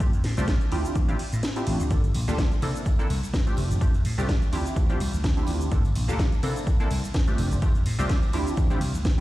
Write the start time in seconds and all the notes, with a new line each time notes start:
0.00 A3 C4 D4 F4 G4, kick, closed hi-hat, shaker
0.13 F2, closed hi-hat, shaker
0.24 A2, snare, open hi-hat, ride
0.37 C2 A3 C4 D4 F4 G4, closed hi-hat, shaker
0.48 kick, snare, closed hi-hat, shaker
0.61 closed hi-hat, shaker
0.72 D2 C4 D4 E4 F4 G4, open hi-hat, ride
0.85 closed hi-hat, shaker
0.95 A1, kick, closed hi-hat, shaker
1.08 C4 D4 E4 F4 G4, closed hi-hat, shaker
1.19 open hi-hat, ride
1.32 A2, closed hi-hat, shaker
1.43 snare, closed hi-hat, shaker
1.56 C4 D4 E4 F4 G4, closed hi-hat, shaker
1.67 A1, open hi-hat, ride
1.80 D2, closed hi-hat, shaker
1.90 G1 A#3 D4 F4 G4 A4, kick, closed hi-hat, tambourine, shaker
2.04 closed hi-hat, tambourine, shaker
2.14 A#1, open hi-hat, ride, tambourine
2.28 D2 A#3 D4 F4 G4 A4, closed hi-hat, tambourine, shaker
2.38 kick, snare, closed hi-hat, tambourine, shaker
2.52 closed hi-hat, tambourine, shaker
2.62 C3 A#3 C4 D4 E4 A4, open hi-hat, ride, tambourine
2.75 closed hi-hat, tambourine, shaker
2.85 kick, closed hi-hat, tambourine, shaker
2.99 A#3 C4 D4 E4 A4, closed hi-hat, shaker
3.10 C2, open hi-hat, ride, tambourine
3.23 muted slap bass stroke, closed hi-hat, tambourine, shaker
3.34 G2, kick, snare, closed hi-hat, shaker
3.47 A3 C4 D4 F4 G4, closed hi-hat, shaker
3.57 F1, open hi-hat, ride, tambourine
3.71 F1, closed hi-hat, tambourine, shaker
3.81 A3 C4 D4 F4 G4, kick, closed hi-hat, tambourine, shaker
3.94 F2, closed hi-hat, tambourine, shaker
4.05 A2, open hi-hat, ride, tambourine
4.18 C2 A3 C4 D4 F4 G4, closed hi-hat, tambourine, shaker
4.29 kick, snare, closed hi-hat, tambourine, shaker
4.42 closed hi-hat, tambourine, shaker
4.53 D2 C4 D4 E4 F4 G4, open hi-hat, ride, tambourine
4.65 closed hi-hat, tambourine, shaker
4.76 A1, kick, closed hi-hat, tambourine, shaker
4.89 C4 D4 E4 F4 G4, closed hi-hat, tambourine, shaker
5.00 C2, open hi-hat, ride, tambourine
5.13 D2, tambourine, shaker
5.24 kick, snare, closed hi-hat, tambourine, shaker
5.37 C4 D4 E4 F4 G4, closed hi-hat, shaker
5.47 D2, open hi-hat, ride, tambourine
5.61 closed hi-hat, tambourine, shaker
5.71 G1 A#3 D4 F4 G4 A4, kick, closed hi-hat, tambourine, shaker
5.85 closed hi-hat, tambourine, shaker
5.95 A#1, open hi-hat, ride, tambourine
6.08 D2 A#3 D4 F4 G4 A4, closed hi-hat, shaker
6.19 kick, snare, closed hi-hat, tambourine, shaker
6.32 closed hi-hat, tambourine, shaker
6.43 C3 A#3 C4 D4 E4 A4, open hi-hat, ride, tambourine
6.56 closed hi-hat, tambourine, shaker
6.67 kick, closed hi-hat, tambourine, shaker
6.80 A#3 C4 D4 E4 A4, closed hi-hat, tambourine, shaker
6.91 C2, open hi-hat, ride, tambourine
7.03 muted slap bass stroke, closed hi-hat, tambourine, shaker
7.14 G2, kick, snare, closed hi-hat, shaker
7.27 A3 C4 D4 F4 G4, closed hi-hat, shaker
7.38 F1, open hi-hat, ride, tambourine
7.51 F1, closed hi-hat, tambourine, shaker
7.62 A3 C4 D4 F4 G4, kick, closed hi-hat, tambourine, shaker
7.75 F2, closed hi-hat, tambourine, shaker
7.86 A2, open hi-hat, ride, tambourine
7.99 C2 A3 C4 D4 F4 G4, closed hi-hat, tambourine, shaker
8.09 kick, snare, closed hi-hat, tambourine, shaker
8.23 closed hi-hat, tambourine, shaker
8.33 D2 C4 D4 E4 F4 G4, open hi-hat, ride, tambourine
8.47 closed hi-hat, tambourine, shaker
8.57 A1, kick, closed hi-hat, tambourine, shaker
8.70 C4 D4 E4 F4 G4, closed hi-hat, tambourine, shaker
8.81 C2, open hi-hat, ride, tambourine
8.94 D2, closed hi-hat, tambourine, shaker
9.05 kick, snare, closed hi-hat, tambourine, shaker